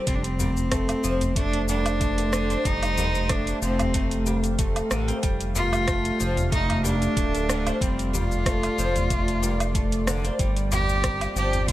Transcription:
Already playing: C4 F4
0.07 F1 G3 A3 C4, kick, closed hi-hat, cabasa
0.15 D4
0.22 C4, closed hi-hat, cabasa
0.39 G3, tabla na, tabla ge, cabasa
0.55 C5, cabasa
0.69 A3 G4, kick, cross-stick, closed hi-hat, tabla tin, cabasa
0.89 closed hi-hat, cabasa, low woodblock
1.04 F1 F3, cabasa
1.21 closed hi-hat, tabla ge, cabasa
1.36 A3 D4, kick, closed hi-hat, cabasa
1.53 closed hi-hat, tabla ge
1.68 G3 D4, tabla na, tabla tin, cabasa
1.86 closed hi-hat, cabasa, low woodblock
2.01 A3, kick, closed hi-hat, cabasa
2.18 closed hi-hat, tabla tin, cabasa
2.33 D3, cross-stick, cabasa
2.40 F5
2.50 C4, closed hi-hat, cabasa
2.65 F1 G3 D#4, kick, closed hi-hat, cabasa
2.83 closed hi-hat, cabasa, low woodblock
2.97 G3, tabla na, tabla ge, cabasa
3.15 cabasa
3.29 A3 D4, kick, cross-stick, closed hi-hat, cabasa
3.47 closed hi-hat, cabasa
3.62 F1 F3 C4, cabasa
3.79 closed hi-hat, tabla ge, cabasa, low woodblock
3.94 A3, kick, closed hi-hat, cabasa
4.11 closed hi-hat, cabasa
4.26 G3, tabla na, cabasa
4.44 closed hi-hat, cabasa
4.59 A3, kick, closed hi-hat, cabasa
4.76 closed hi-hat, cabasa, low woodblock
4.91 A1 D3, cross-stick, tabla na, cabasa
5.08 C4, closed hi-hat, tabla na, tabla tin, cabasa
5.23 F1 G3, kick, closed hi-hat, cabasa
5.41 closed hi-hat, cabasa
5.55 G3 F4, tabla na, tabla ge, cabasa
5.73 cabasa, low woodblock
5.88 A3, kick, cross-stick, closed hi-hat, cabasa
5.97 D5
6.05 closed hi-hat, cabasa
6.20 F1 F3, cabasa
6.37 closed hi-hat, tabla ge, cabasa
6.52 A3 D#4, kick, closed hi-hat, cabasa
6.70 closed hi-hat, tabla ge, low woodblock
6.84 G3 D4, tabla na, tabla tin, cabasa
7.02 closed hi-hat, cabasa
7.17 D1 A3, kick, closed hi-hat, cabasa
7.34 closed hi-hat, tabla tin, cabasa
7.49 D3, cross-stick, cabasa
7.66 C4, closed hi-hat, cabasa, low woodblock
7.81 F1 G3 C4, kick, closed hi-hat, cabasa
7.99 closed hi-hat, cabasa
8.13 G3 F4, tabla na, tabla ge, cabasa
8.32 cabasa
8.46 A3, kick, cross-stick, closed hi-hat, tabla tin, cabasa
8.63 closed hi-hat, cabasa, low woodblock
8.78 F1 F3, cabasa
8.96 closed hi-hat, tabla ge, cabasa
9.10 A3, kick, closed hi-hat, tabla ge, cabasa
9.28 closed hi-hat, cabasa
9.43 G3, tabla na, cabasa
9.60 closed hi-hat, cabasa, low woodblock
9.75 A3, kick, closed hi-hat, cabasa
9.92 closed hi-hat, cabasa
10.07 D3, cross-stick, tabla na, cabasa
10.25 C4, closed hi-hat, tabla na, tabla tin, cabasa
10.39 G1 G3, kick, closed hi-hat, cabasa
10.57 closed hi-hat, cabasa
10.72 G3 G4, tabla na, tabla ge, cabasa
10.77 C4
10.89 cabasa
11.04 A#3, kick, cross-stick, closed hi-hat, tabla tin, cabasa
11.15 F4
11.21 closed hi-hat, cabasa, low woodblock
11.36 G1 F3 G4, cabasa
11.53 closed hi-hat, tabla ge, cabasa
11.68 A#3 F4, kick, closed hi-hat, cabasa

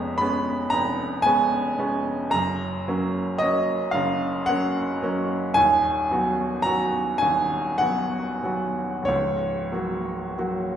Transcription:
Already playing: F1 F2 G#3 B3 C#4 A#5
0.18 G#3 B3 C#4 B5
0.70 F1 F2 A#5
1.22 G#3 B3 C#4 G#5
1.79 G#3 B3 C#4
2.30 F#2 A#5
2.34 F#1
2.88 F#3 A#3 C#4
3.38 F#3 D#5
3.43 A#3 C#4
3.91 F#1 F#2 F5
4.46 F#3 A#3 C#4 F#5
5.02 F#3 A#3 C#4
5.54 D#1 D#2 G#5
6.11 F#3 B3 F#4
6.62 F#3 B3 F#4 A#5
7.18 D#1 D#2 G#5
7.78 F#3 B3 F#4 F#5
8.44 F#3 B3 F#4
9.03 C#1 C#5
9.08 C#2
9.72 F#3 A#3 F#4
10.38 F#3 A#3 F#4

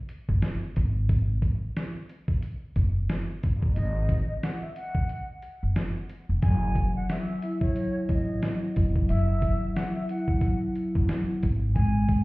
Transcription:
0.09 closed hi-hat
0.29 F#1, kick
0.42 snare, closed hi-hat
0.76 G#1, kick, closed hi-hat
1.09 kick, closed hi-hat
1.42 kick, closed hi-hat
1.77 snare, closed hi-hat
2.09 closed hi-hat
2.28 kick
2.42 closed hi-hat
2.76 F#1, kick, closed hi-hat
3.09 snare, closed hi-hat
3.43 G1, kick, closed hi-hat
3.62 kick
3.75 G#1 D#5, closed hi-hat
4.09 kick, closed hi-hat
4.43 F#5, snare, closed hi-hat
4.61 E5
4.76 F#5, closed hi-hat
4.95 kick
5.09 closed hi-hat
5.42 closed hi-hat
5.63 F#1
5.76 snare, closed hi-hat
6.09 closed hi-hat
6.29 F1
6.42 F#1 F#3 G#5, kick, closed hi-hat
6.75 kick, closed hi-hat
6.96 F#5
7.10 F#3 E5, snare, closed hi-hat
7.42 E4, closed hi-hat
7.61 C#5, kick
7.76 F#3, closed hi-hat
8.07 A1 D#5, kick, closed hi-hat
8.42 F#3, snare, closed hi-hat
8.76 F1, kick, closed hi-hat
8.96 kick
9.09 F#1 F#3 E5, closed hi-hat
9.42 kick, closed hi-hat
9.75 F#3 F#5, snare, closed hi-hat
9.95 E5
10.09 E4 F#5, closed hi-hat
10.28 kick
10.41 F#3, kick, closed hi-hat
10.76 closed hi-hat
10.95 F#1, kick
11.09 F#3, snare, closed hi-hat
11.43 G#1, kick, closed hi-hat
11.75 G#3 G#5, kick, closed hi-hat
12.09 kick, closed hi-hat

